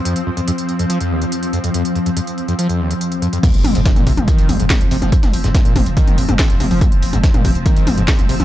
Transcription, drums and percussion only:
0.05 closed hi-hat medium
0.16 closed hi-hat medium
0.37 closed hi-hat medium
0.48 closed hi-hat medium
0.58 closed hi-hat medium
0.69 closed hi-hat soft
0.79 closed hi-hat medium
0.90 closed hi-hat medium
1.01 closed hi-hat soft
1.22 closed hi-hat soft
1.32 closed hi-hat medium
1.43 closed hi-hat soft
1.53 closed hi-hat medium
1.64 closed hi-hat medium
1.74 closed hi-hat medium
1.85 closed hi-hat medium
1.96 closed hi-hat soft
2.06 closed hi-hat soft
2.17 closed hi-hat medium
2.27 closed hi-hat soft
2.38 closed hi-hat soft
2.48 closed hi-hat soft
2.59 closed hi-hat medium
2.69 closed hi-hat soft
2.91 closed hi-hat soft
3.01 closed hi-hat medium
3.12 closed hi-hat soft
3.22 closed hi-hat soft
3.33 closed hi-hat medium
3.43 kick loud
3.43 closed hi-hat medium
3.43 mid tom medium
3.43 crash loud
3.54 closed hi-hat medium
3.64 closed hi-hat medium
3.64 open hi-hat loud
3.64 mid tom loud
3.75 closed hi-hat soft
3.75 closed hi-hat medium
3.85 kick loud
3.85 snare loud
3.85 closed hi-hat medium
3.96 closed hi-hat medium
3.96 mid tom medium
4.07 kick medium
4.07 closed hi-hat medium
4.07 open hi-hat loud
4.17 closed hi-hat soft
4.17 mid tom medium
4.28 kick loud
4.28 closed hi-hat medium
4.38 closed hi-hat soft
4.38 closed hi-hat medium
4.49 closed hi-hat medium
4.49 open hi-hat loud
4.49 mid tom medium
4.60 closed hi-hat medium
4.70 kick loud
4.70 snare loud
4.70 closed hi-hat medium
4.70 mid tom medium
4.81 closed hi-hat medium
4.91 closed hi-hat medium
4.91 open hi-hat loud
5.02 closed hi-hat medium
5.02 mid tom medium
5.12 kick loud
5.12 closed hi-hat medium
5.23 snare soft
5.23 closed hi-hat medium
5.23 mid tom medium
5.33 closed hi-hat medium
5.33 open hi-hat loud
5.44 snare soft
5.44 closed hi-hat medium
5.55 kick loud
5.55 snare loud
5.55 closed hi-hat medium
5.55 mid tom medium
5.65 closed hi-hat medium
5.76 kick medium
5.76 closed hi-hat medium
5.76 open hi-hat loud
5.76 mid tom medium
5.86 closed hi-hat medium
5.86 closed hi-hat soft
5.97 kick loud
5.97 closed hi-hat medium
6.07 closed hi-hat medium
6.07 mid tom medium
6.18 closed hi-hat medium
6.18 open hi-hat loud
6.29 closed hi-hat medium
6.29 mid tom medium
6.39 kick loud
6.39 snare loud
6.39 closed hi-hat medium
6.39 open hi-hat medium
6.50 closed hi-hat medium
6.60 closed hi-hat medium
6.60 open hi-hat loud
6.60 mid tom medium
6.71 closed hi-hat soft
6.71 open hi-hat medium
6.81 kick loud
6.81 closed hi-hat medium
6.81 mid tom medium
6.92 closed hi-hat medium
7.02 closed hi-hat medium
7.02 open hi-hat loud
7.13 closed hi-hat medium
7.13 closed hi-hat soft
7.13 mid tom medium
7.24 kick loud
7.24 snare loud
7.24 closed hi-hat medium
7.34 closed hi-hat medium
7.34 mid tom medium
7.45 kick medium
7.45 closed hi-hat medium
7.45 open hi-hat loud
7.55 closed hi-hat medium
7.66 kick loud
7.66 closed hi-hat medium
7.66 mid tom medium
7.76 closed hi-hat medium
7.76 closed hi-hat soft
7.87 closed hi-hat medium
7.87 open hi-hat loud
7.87 mid tom medium
7.98 closed hi-hat medium
8.08 kick loud
8.08 snare loud
8.08 closed hi-hat medium
8.19 closed hi-hat medium
8.19 mid tom medium
8.29 closed hi-hat medium
8.29 open hi-hat loud
8.40 closed hi-hat medium
8.40 mid tom medium

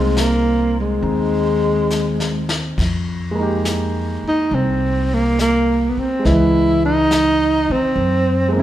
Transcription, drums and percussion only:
0.17 snare soft
0.17 hi-hat pedal soft
1.03 brush sweep soft
1.90 snare soft
1.90 hi-hat pedal soft
2.20 snare soft
2.49 snare medium
2.78 brush sweep soft
2.78 kick medium
2.78 snare soft
2.78 ride medium
3.65 snare soft
3.65 hi-hat pedal soft
4.53 brush sweep soft
5.39 snare soft
5.39 hi-hat pedal soft
6.25 brush sweep soft
6.25 snare soft
7.11 snare soft
7.11 hi-hat pedal soft
7.97 brush sweep soft

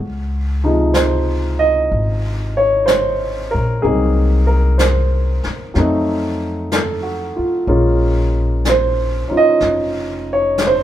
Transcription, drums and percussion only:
0.94 brush sweep soft
0.94 snare soft
0.94 hi-hat pedal soft
1.91 brush sweep soft
2.87 brush sweep soft
2.87 snare soft
2.87 hi-hat pedal soft
3.83 brush sweep soft
4.79 brush sweep soft
4.79 snare soft
4.79 hi-hat pedal soft
5.43 snare soft
5.75 brush sweep soft
5.75 snare soft
6.72 brush sweep soft
6.72 snare soft
6.72 hi-hat pedal soft
7.69 brush sweep soft
8.65 brush sweep soft
8.65 snare soft
8.65 hi-hat pedal soft
9.60 brush sweep soft
9.60 snare soft
10.58 brush sweep soft
10.58 snare soft
10.58 hi-hat pedal soft

